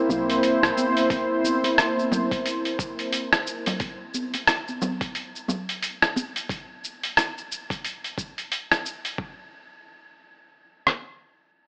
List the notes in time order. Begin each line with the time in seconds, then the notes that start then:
Already playing: A#3 C4 E4 A#4 C5
0.09 C2, muted conga, high conga, low conga, shaker
0.30 open hi-hat, shaker
0.43 open hi-hat, shaker
0.63 C2, cross-stick, shaker
0.77 muted conga, high conga, shaker
0.97 open hi-hat, shaker
1.10 kick, open hi-hat, muted conga, shaker
1.44 high conga, shaker
1.64 open hi-hat, muted conga, shaker
1.78 cross-stick, open hi-hat, shaker
1.98 high conga, shaker
2.11 high conga, low conga, shaker
2.31 kick, open hi-hat, shaker
2.46 open hi-hat, shaker
2.65 open hi-hat, shaker
2.79 kick, shaker
2.99 open hi-hat, shaker
3.13 open hi-hat, shaker
3.33 cross-stick, open hi-hat, shaker
3.47 shaker
3.66 open hi-hat, muted conga, low conga, shaker
3.80 kick, open hi-hat, muted conga, shaker
4.14 high conga, shaker
4.34 open hi-hat, muted conga, shaker
4.47 cross-stick, open hi-hat, shaker
4.68 high conga, shaker
4.82 high conga, low conga, shaker
5.01 kick, open hi-hat, shaker
5.15 open hi-hat, shaker
5.36 shaker
5.48 muted conga, high conga, low conga, shaker
5.69 open hi-hat, shaker
5.83 open hi-hat, shaker
6.02 cross-stick, shaker
6.16 muted conga, high conga, shaker
6.36 open hi-hat, shaker
6.49 kick, open hi-hat, shaker
6.84 shaker
7.03 open hi-hat, shaker
7.17 cross-stick, open hi-hat, shaker
7.38 shaker
7.52 shaker
7.70 kick, open hi-hat, shaker
7.84 open hi-hat, shaker
8.04 open hi-hat, shaker
8.18 kick, shaker
8.38 open hi-hat, shaker
8.52 open hi-hat, shaker
8.72 cross-stick, open hi-hat, shaker
8.86 shaker
9.05 open hi-hat, shaker
9.18 kick
10.87 cross-stick